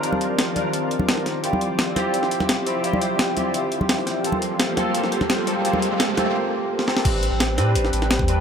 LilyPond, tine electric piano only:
\new Staff \with { instrumentName = "Tine electric piano" } { \time 4/4 \key a \phrygian \tempo 4 = 171 <d' ees' f' bes'>4. <d' ees' f' bes'>16 r2 r16 | <c' e' f' g'>4. <c' e' f' g'>2 <c' e' f' g'>16 r16 | <c' e' f' g'>4. <c' e' f' g'>16 r2 r16 | <bes c' f' a'>4. <bes c' f' a'>2 <bes c' f' a'>16 r16 |
<bes c' f' a'>4. <bes c' f' a'>16 r4. r16 <bes c' f' a'>8 | <c' d' g' b'>4. <c' d' g' b'>2 <c' d' g' b'>16 r16 | }